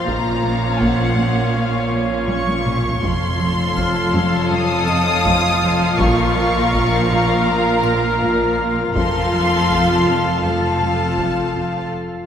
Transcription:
Already playing: viola section F3, violin section F4 F5 F6 A6, vibraphone D#5 D#6
0.06 double bass section A#1, cello section A#2, viola section C#4, synth texture C#5, violin section A#5, taiko
0.43 cello section A#3
0.80 cello section A#3, violin section F#5, taiko
1.17 cello section A#2
1.43 violin section G#6
1.54 cello section A#2, violin section F5
1.92 cello section A#2
2.28 cello section A#2, violin section C#6, taiko high
2.47 taiko high
2.66 cello section A#2, taiko mid
2.84 taiko low
3.02 double bass section F1, cello section F2, viola section F3 F4, synth texture F4 A4 F5, violin section A4 C#5 F5 C6 C7, taiko
3.40 cello section F3
3.77 cello section F3, vibraphone F6, taiko
4.14 cello section F2
4.51 cello section F2, violin section D#6
4.88 cello section F2, vibraphone D#5 D#6
5.25 cello section F2, taiko
5.62 cello section F2
5.99 double bass section A#1, cello section A#2, violin section A#4 C#6, synth texture A#4, taiko
6.36 cello section A#3
6.62 violin section D5
6.74 cello section A#3, taiko
7.10 cello section A#2
7.47 cello section A#2, violin section A#5
7.84 cello section A#2, vibraphone F6
8.21 cello section A#2, taiko
8.59 cello section A#2
8.95 double bass section F1, cello section F2, viola section F3 F4, synth texture F4 A4 F5, violin section A4 F5 C6, taiko
9.32 cello section F3
9.69 cello section F3, taiko
10.07 cello section F2
10.43 cello section F2, viola section F3 F4, violin section A4 F5 A5
10.81 cello section F2
11.17 cello section F2, taiko
11.55 cello section F2

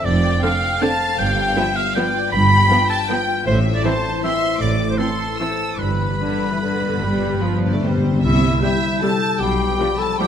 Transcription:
Already playing: harp A3 C4 D4 A4 C5 D5
0.04 double bass section F1, harp F2, cello section F2, violin section D5 G5, oboe D5
0.23 harp C4
0.42 viola section D3 C4, harp D4, oboe F5, violin section F5
0.62 harp A4
0.81 viola section D3 C4, harp C5, violin section F5 A5, oboe A5
1.00 harp A4
1.18 double bass section G1, cello section G2, harp G2, oboe G5, violin section G5
1.36 harp B3
1.56 viola section F3 B3, harp D4, violin section E5
1.76 harp F4, oboe F5, violin section F5
1.95 viola section F3 B3, harp B4, violin section D5 G5, oboe G5
2.14 harp F4
2.31 double bass section G1, cello section G2, harp G2, violin section G5 B5, oboe B5
2.50 harp B3
2.70 viola section F3 B3, harp D4
2.90 harp F4, oboe A5, violin section A5
3.09 viola section F3 B3, harp B4, oboe G5, violin section G5
3.28 harp F4
3.46 double bass section A1, harp A2, cello section A2, violin section C5 E5, oboe C5
3.65 harp C4
3.75 oboe D5, violin section D5
3.84 harp E3, viola section E3 C4, oboe C5, violin section C5 A5
4.04 harp E4
4.23 viola section E3 C4, harp C5, oboe E5, violin section E5 C6
4.42 harp E4
4.60 double bass section A1, cello section A2, harp A2, violin section D5 D6, oboe D5
4.79 harp C4
4.89 violin section C5, oboe C5
4.98 harp E3, viola section E3 C4, oboe A4, violin section A4 C6
5.20 harp E4
5.38 viola section E3 C4, oboe A4, violin section A4 E6, harp C5
5.59 harp E4
5.78 double bass section G1, cello section G2, timpani G2, harp G2, oboe B4, violin section B4 B5
5.98 timpani G2, harp G3
6.09 timpani G2
6.17 timpani G2, viola section D3, harp D4
6.34 timpani G2
6.41 timpani G2, harp G4
6.52 viola section E3
6.58 timpani G2, harp D4
6.62 viola section D3
6.66 timpani G2
6.73 timpani G2
6.81 timpani G2, harp G4
6.89 timpani G2
6.97 timpani G2, harp G2
7.01 double bass section G1, cello section G2, timpani G2, viola section G3
7.11 timpani G2
7.18 timpani G2, harp G3
7.26 timpani G2
7.34 timpani G2
7.41 timpani G2, viola section F3, harp D4
7.50 timpani G2
7.58 timpani G2, violin section D5
7.62 clarinet D4, harp G4
7.67 timpani G2
7.74 timpani G2, viola section A3
7.82 timpani G2, viola section G3, clarinet C4, harp D4, violin section C5
7.90 timpani G2
7.97 timpani G2
8.04 timpani G2, harp G4
8.13 timpani G2
8.22 double bass section C2, timpani C3, cello section C3, harp C3, clarinet E4, violin section E5, flute section E6
8.42 harp G3
8.62 viola section G3, french horn section G3 G4, harp C4, violin section C4 E4 E5, clarinet E4, flute section G6
8.82 harp E4
9.02 harp G3, viola section G3, french horn section G3 G4, violin section C4 E4 A5, clarinet A4
9.21 harp G4
9.40 double bass section B1, cello section B2, harp B2, clarinet G4, violin section G5, flute section B5
9.59 harp G3
9.78 viola section F3 G3, harp F3, french horn section G3 F4, violin section G3 D4
9.99 harp F4, clarinet A4, violin section A5
10.19 viola section F3 G3, violin section G3 D4 G5, harp G3, french horn section G3 F4, clarinet G4, flute section D6

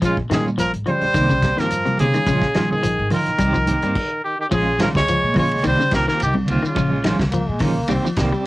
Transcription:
0.02 upright bass A#1, clean electric guitar F3 G#3 C#4 F4, trumpet F4, kick, closed hi-hat, shekere
0.06 trombone C#3
0.17 kick
0.30 upright bass A#2, clean electric guitar D#3 G#3 C#4 F4, trombone D#3, trumpet G#4, snare, closed hi-hat, high conga, claves, shekere
0.46 high conga, shekere
0.58 upright bass A#1, clean electric guitar F3, trombone F3, trumpet A#4, closed hi-hat, shekere
0.73 upright bass G#1, closed hi-hat
0.86 clean electric guitar F3 G#3 C#4 F4, trombone G3, trumpet C5, muted upright bass stroke, closed hi-hat, high conga, low conga, claves, shekere
1.01 upright bass A#1, closed hi-hat
1.14 upright bass C2, clean electric guitar D#3 A#3 C4 G4, kick, closed hi-hat, claves, shekere
1.29 clean electric guitar C#3, kick, closed hi-hat, shekere
1.42 clean electric guitar A#3 C4 G4, kick, snare, closed hi-hat, high conga, shekere
1.57 upright bass G2, clean electric guitar D#3 A#3 C4 G4, trombone F3, trumpet A#4, snare, closed hi-hat, shekere
1.70 closed hi-hat, claves, shekere
1.85 clean electric guitar C3 A#3 G4, closed hi-hat, high conga
1.98 upright bass C3, trombone C#3, clean electric guitar D#3 A#3 C4 G4, trumpet G#4, closed hi-hat, low conga, shekere
2.13 clean electric guitar D#3, closed hi-hat, high conga, claves, shekere
2.26 upright bass A#1, clean electric guitar C#3 F3 G#3 C#4 F4, kick, closed hi-hat, shekere
2.42 kick, snare
2.54 upright bass A#2, clean electric guitar D#3 F3 G#3 C#4 F4, snare, closed hi-hat, high conga, claves, shekere
2.71 trombone D#3, trumpet G#4, high conga, low conga, shekere
2.83 upright bass A#1, clean electric guitar F3, closed hi-hat, shekere
2.99 upright bass G#1
3.10 clean electric guitar D#3 F3 F4, trombone D#3, trumpet A#4, muted upright bass stroke, muted clean electric guitar stroke, open hi-hat, high conga, low conga, claves, shekere
3.26 upright bass A#1, closed hi-hat
3.38 upright bass C2, clean electric guitar D#3 G3 C4 G4, muted clean electric guitar stroke, kick, closed hi-hat, high conga, claves, shekere
3.53 clean electric guitar F3, kick, shekere
3.67 clean electric guitar D#3 A#3 C4 G4, closed hi-hat, high conga, shekere
3.82 upright bass G2, clean electric guitar G3 A#3 C4 G4, closed hi-hat, shekere
3.96 kick, crash
4.24 trombone D#3, trumpet G4
4.39 trombone D#3, trumpet G4
4.49 upright bass A#1, trombone C#3, clean electric guitar F3 G#3 C#4 F4, kick, ride bell, shekere
4.53 trumpet G#4
4.65 clean electric guitar C#4 F4
4.78 clean electric guitar D#3 G#3 C#4 F4, trombone F3, snare, ride bell, high conga, claves, shekere
4.82 trumpet A#4
4.94 upright bass C#2, trombone G#3, trumpet C#5, kick, snare, low conga, shekere
5.08 clean electric guitar F3, ride bell, shekere
5.23 upright bass A#2
5.34 clean electric guitar F3 G#3 C#4 F4, kick, open hi-hat, high conga, low conga, claves, shekere
5.38 trombone G#3, trumpet C#5
5.51 upright bass C#2, ride bell
5.63 upright bass C2, clean electric guitar D#3 A#3 C4 G4, ride bell, claves, shekere
5.67 trombone G3, trumpet C5
5.79 clean electric guitar C#3, muted upright bass stroke, shekere
5.91 upright bass C2, clean electric guitar D#3 A#3 C4 G4, trombone F3, trumpet A#4, kick, snare, ride bell, high conga, shekere
6.07 clean electric guitar D#3 A#3 C4 G4, trumpet A#4, snare, shekere
6.14 trombone F3
6.20 upright bass C2, trumpet G4, ride bell, claves, shekere
6.25 trombone D#3
6.34 clean electric guitar C3, high conga
6.46 upright bass C2, clean electric guitar D#3 A#3 C4, muted clean electric guitar stroke, ride bell, low conga
6.50 trombone C3, trumpet F4, shekere
6.62 clean electric guitar D#3, muted upright bass stroke, claves, shekere
6.66 trombone C#3, trumpet F4
6.75 upright bass A#1, clean electric guitar C#3 F3 G#3 C#4 F4, kick, ride bell, shekere
6.92 clean electric guitar G#3 C#4 F4
7.04 clean electric guitar D#3 F3 G#3 C#4 F4, snare, ride bell, high conga, claves, shekere
7.18 upright bass C#2, kick, snare, high conga, low conga, shekere
7.31 clean electric guitar F3, bass trombone A#3, ride bell, shekere
7.49 upright bass A#2, bass trombone G#3
7.59 clean electric guitar D#3 F3 G#3 C#4 F4, bass trombone A#3, kick, snare, open hi-hat, high conga, low conga, claves, shekere
7.77 upright bass C#2
7.88 upright bass C2, clean electric guitar D#3 G3 A#3 C4 G4, bass trombone C4, ride bell, claves, shekere
8.04 clean electric guitar F3, muted upright bass stroke, shekere
8.16 upright bass C2, clean electric guitar D#3 A#3 C4 G4, bass trombone G3, kick, snare, ride bell, high conga, shekere
8.32 clean electric guitar G3 G4, shekere

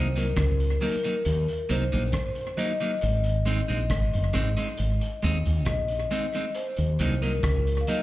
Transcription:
Already playing: fretless electric bass C2, vibraphone C5
0.16 clean electric guitar F#3 A#3 D#4, vibraphone A#4, closed hi-hat
0.36 fretless electric bass C#2, kick, cross-stick, closed hi-hat
0.60 closed hi-hat
0.80 clean electric guitar F#3 A#3 D#4, vibraphone A#4, open hi-hat
1.04 clean electric guitar F#3 A#3 D#4, closed hi-hat
1.25 fretless electric bass D#2, closed hi-hat
1.48 closed hi-hat
1.69 fretless electric bass C2, clean electric guitar F#3 A#3 D#4, vibraphone C5, closed hi-hat
1.92 fretless electric bass A#1, clean electric guitar F#3 A#3 D#4, closed hi-hat
2.12 kick, cross-stick, closed hi-hat
2.35 closed hi-hat
2.57 clean electric guitar F#3 A#3 D#4, vibraphone D#5, closed hi-hat
2.80 clean electric guitar F#3 A#3 D#4, closed hi-hat
3.01 fretless electric bass G#1, closed hi-hat
3.24 closed hi-hat
3.46 clean electric guitar G#3 C4 D#4, closed hi-hat
3.68 fretless electric bass A#1, clean electric guitar G#3 C4 D#4, closed hi-hat
3.90 fretless electric bass G#1, kick, cross-stick, closed hi-hat
4.13 fretless electric bass F#1, closed hi-hat
4.33 fretless electric bass G#1, clean electric guitar G#3 C4 D#4, cross-stick, closed hi-hat
4.57 clean electric guitar G#3 C4 D#4, closed hi-hat
4.77 fretless electric bass G#1, closed hi-hat
5.01 closed hi-hat
5.22 fretless electric bass D#2, clean electric guitar G#3 C4 D#4, closed hi-hat
5.46 fretless electric bass D#2, closed hi-hat
5.65 fretless electric bass A#1, vibraphone D#5, kick, cross-stick, closed hi-hat
5.88 closed hi-hat
6.11 clean electric guitar G#3 C4 D#4, closed hi-hat
6.33 clean electric guitar G#3 C4 D#4, closed hi-hat
6.54 vibraphone C5, closed hi-hat
6.76 fretless electric bass D#2, closed hi-hat
6.99 fretless electric bass C2, clean electric guitar F#3 A#3 D#4, closed hi-hat
7.22 clean electric guitar F#3 A#3 D#4, vibraphone A#4, closed hi-hat
7.43 fretless electric bass C#2, kick, cross-stick, closed hi-hat
7.67 closed hi-hat
7.81 vibraphone F5
7.87 clean electric guitar F#3 A#3 D#4, vibraphone D#5, closed hi-hat

